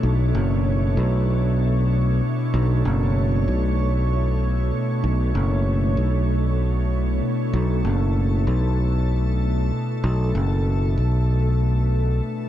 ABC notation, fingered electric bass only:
X:1
M:4/4
L:1/8
Q:"Swing 16ths" 1/4=96
K:Bm
V:1 name="Fingered electric bass" clef=bass
B,,, F,,,2 B,,,4 z | B,,, F,,,2 B,,,4 z | B,,, F,,,2 B,,,4 z | B,,, F,,,2 B,,,4 z |
B,,, F,,,2 B,,,4 z |]